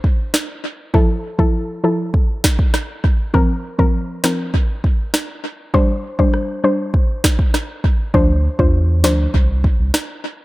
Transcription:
0.04 kick
0.34 cross-stick, snare
0.94 F3 E4 A4, kick
1.39 F3 E4 A4, kick
1.84 F3 E4 A4
2.14 kick
2.44 kick, cross-stick, snare
2.59 kick
2.74 cross-stick, snare
3.04 kick
3.34 F3 C4 A#4, kick
3.79 F3 C4 A#4, kick
4.24 F3 C4 A#4, cross-stick, snare
4.54 kick
4.84 kick
5.14 cross-stick, snare
5.74 G3 D4 C5, kick
6.19 G3 D4 C5, kick
6.34 cross-stick
6.64 G3 D4 C5
6.94 kick
7.24 kick, cross-stick, snare
7.39 kick
7.54 cross-stick, snare
7.84 kick
8.14 D2 F3 D4 C5, kick
8.59 E2 D4 F4 C5, kick
9.04 D2 F3 D4 C5, cross-stick, snare
9.34 C2, kick
9.64 kick
9.79 C2
9.94 cross-stick, snare

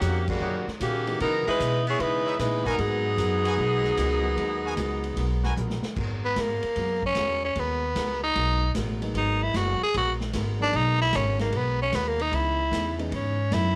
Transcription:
Already playing: C#3 A#3 D#4 F#4 G4 A#4 C#5 F#5
0.01 F2 D#3 G3 C#4 F#4, hi-hat pedal, ride
0.28 C#3 G3 A#3 F#4, kick, crash
0.40 F#2 D#3 G3 C#4 D#4 F#4 G4 C#5 F#5
0.67 muted upright bass stroke, snare
0.80 A#2 C#3 D#3 G3 A#3 C#4 F#4 G4, hi-hat pedal, ride
1.06 E3 G#3 B3 C#4 D#4, ride
1.20 C#3 E3 F#3 B3 D#4 A#4, ride
1.47 G#3 D#4 E4 B4, muted upright bass stroke
1.60 B2 C#3 E3 B3 D#4, hi-hat pedal, ride
1.87 B3 E4 G#4 C#5, ride
1.99 C#3 E3 G#3 B3 D#4 E4 B4, ride
2.25 D#4 B4 C#5 E5
2.39 A#2 C#3 E3 G#3 B3 D#4 E4 B4, snare, hi-hat pedal, ride
2.65 F#3 B3 D#4 F#4 A#4 B4 G#5, kick, ride
2.77 G#2 F#3 G#3 A#3 B3 D#4 F#4 G#4 A#4, ride
3.18 F#2 G#3 B3 F#4 A#4, hi-hat pedal, ride
3.44 F#4 A#4 B4 G#5, ride
3.58 B1 G#3 B3 F#4 A#4
3.84 snare
3.97 C#2 G#3 B3 F#4 A#4, hi-hat pedal, ride
4.23 F#3 G#3 A#3 B3 D#4
4.37 D#2 G#3 B3 F#4 A#4, ride
4.64 F#4 A#4 B4 G#5
4.77 C#2 G#3 B3 F#4 A#4, hi-hat pedal, ride
5.03 ride
5.16 B1 G#3 B3 F#4 A#4, ride
5.43 F#4 A#4 B4 G#5, snare
5.57 A#1 G#3 B3 F#4 A#4, hi-hat pedal, high tom
5.70 snare
5.83 muted upright bass stroke, snare
5.96 G#1 G#3 B3 F#4 A#4, kick, crash
6.25 B3
6.36 G#2 G#3 B3 F#4 A#4, snare, hi-hat pedal, ride
6.40 A#3
6.63 muted upright bass stroke, ride
6.76 F#2 G#3 B3 F#4, ride
6.80 A#4
7.03 C#4, kick
7.15 E2 G#3 B3 F#4 A#4, snare, hi-hat pedal, ride
7.45 C#4
7.56 D#2 G#3 B3 F#4 A#4, ride
7.60 B3
7.95 C#2 G#3 B3 F#4 A#4, snare, hi-hat pedal, ride
8.23 D#4
8.35 B1 G#3 B3 F#4 A#4, ride
8.75 A1 G#3 B3 F#4 A#4, snare, hi-hat pedal, ride
9.02 F#3 G#3 A#3 B3 D#4, ride
9.14 G#1 G#3 B3 D#4 F#4 A#4, ride
9.43 E4
9.54 F#1 G#3 B3 F#4 A#4, snare, hi-hat pedal, ride
9.81 G#4, muted upright bass stroke
9.94 A#1 G#3 B3 F#4 A#4, ride
10.21 snare
10.33 G#1 G#3 B3 F#4 A#4, snare, hi-hat pedal, ride
10.60 F#3 G#3 A#3 B3 D4 D#4
10.73 B1 G#3 B3 D#4 F#4 A#4, ride
11.01 E4
11.13 G#1 G#3 B3 C#4 F#4 A#4, snare, hi-hat pedal, ride
11.39 F#3 G#3 A#3 B3 D#4, snare, ride
11.52 B1 G#3 B3 F#4 A#4, ride
11.56 B3
11.82 C#4
11.92 D#2 G#3 B3 F#4 A#4, snare, hi-hat pedal, ride
12.08 A#3
12.19 D#4, ride
12.32 C#2 C#3 E3 B3 D#4 E4, ride
12.71 E2 C#3 E3 B3 D#4, snare, hi-hat pedal, ride
12.98 E3 G#3 B3 C#4 D#4, ride
13.10 G#2 C#3 E3 B3 D#4, ride
13.15 C#4
13.51 F#2 C#3 E3 B3 D#4 E4, snare, hi-hat pedal, ride

